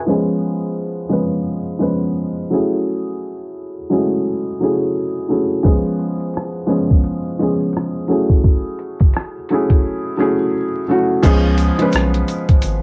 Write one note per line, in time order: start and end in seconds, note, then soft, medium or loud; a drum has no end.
0.00 0.27 B4 medium
0.00 0.27 G#5 medium
0.07 1.01 F3 medium
0.07 1.01 G#3 medium
0.07 1.02 B3 medium
0.07 1.02 C#4 medium
0.07 1.02 G#4 loud
1.09 1.73 F3 medium
1.09 1.73 G#3 medium
1.09 1.74 B3 medium
1.09 1.74 C#4 medium
1.09 1.75 B4 medium
1.79 2.43 F3 medium
1.79 2.43 G#3 medium
1.79 2.44 B3 medium
1.79 2.44 C#4 medium
1.79 2.44 B4 medium
2.50 3.76 F#3 medium
2.50 3.76 A3 medium
2.50 3.76 C#4 medium
2.50 3.77 E4 medium
2.50 3.77 G#4 medium
3.90 4.53 F#3 medium
3.90 3.99 G#3 medium
3.90 4.54 C#4 medium
3.90 4.54 E4 medium
3.90 4.54 G#4 medium
3.97 4.57 A3 medium
4.60 5.23 F#3 medium
4.60 5.23 A3 medium
4.60 5.24 C#4 medium
4.60 5.24 E4 medium
4.60 5.25 G#4 medium
5.29 5.61 F#3 medium
5.29 5.61 A3 medium
5.29 5.62 C#4 medium
5.29 5.62 E4 medium
5.29 5.62 G#4 medium
5.63 6.58 F3 medium
5.63 6.59 G#3 medium
5.63 6.59 B3 medium
5.63 6.59 C#4 medium
5.63 6.60 G#4 loud
5.63 kick medium
5.63 closed hi-hat medium
5.86 closed hi-hat soft
5.99 closed hi-hat medium
6.20 closed hi-hat soft
6.34 cross-stick loud
6.34 closed hi-hat medium
6.67 7.31 F3 medium
6.67 7.31 G#3 medium
6.67 7.31 B3 medium
6.67 7.32 C#4 medium
6.67 7.32 G#4 medium
6.67 closed hi-hat medium
6.91 kick medium
6.91 closed hi-hat soft
7.04 closed hi-hat medium
7.39 8.02 F3 medium
7.39 8.02 G#3 medium
7.39 8.03 B3 medium
7.39 8.03 C#4 medium
7.39 8.04 G#4 medium
7.39 closed hi-hat medium
7.61 closed hi-hat soft
7.73 cross-stick loud
7.73 closed hi-hat medium
8.08 9.34 F#3 medium
8.08 9.34 A3 medium
8.08 9.34 C#4 medium
8.08 9.35 E4 medium
8.08 9.35 G#4 medium
8.08 closed hi-hat medium
8.30 kick medium
8.30 closed hi-hat soft
8.44 kick medium
8.44 closed hi-hat medium
8.79 closed hi-hat medium
9.00 kick medium
9.00 closed hi-hat soft
9.14 cross-stick medium
9.14 closed hi-hat medium
9.49 10.12 F#3 medium
9.49 10.13 A3 medium
9.49 10.13 C#4 medium
9.49 10.13 E4 medium
9.49 closed hi-hat medium
9.54 10.14 G#4 medium
9.70 kick medium
9.70 closed hi-hat soft
10.17 10.81 F#3 medium
10.17 10.81 A3 medium
10.17 10.81 C#4 medium
10.17 10.82 E4 medium
10.17 10.82 G#4 medium
10.88 11.20 F#3 medium
10.88 11.20 A3 medium
10.88 11.20 C#4 medium
10.88 11.21 E4 medium
10.88 11.21 F#4 medium
11.23 11.71 C#2 loud
11.23 11.71 F3 loud
11.23 11.71 G#3 loud
11.23 11.72 B3 medium
11.23 11.72 C#4 loud
11.23 11.72 G#4 loud
11.23 kick medium
11.23 closed hi-hat medium
11.23 crash medium
11.23 shaker medium
11.58 closed hi-hat medium
11.58 shaker soft
11.79 12.82 F3 medium
11.79 12.82 G#3 medium
11.79 12.82 B3 medium
11.79 12.82 C#4 medium
11.79 12.82 B4 medium
11.79 closed hi-hat soft
11.92 12.23 B1 medium
11.92 cross-stick loud
11.92 closed hi-hat medium
11.92 shaker medium
12.14 closed hi-hat soft
12.28 closed hi-hat medium
12.28 shaker medium
12.49 kick medium
12.49 closed hi-hat soft
12.62 12.82 G#1 loud
12.62 closed hi-hat medium
12.62 shaker medium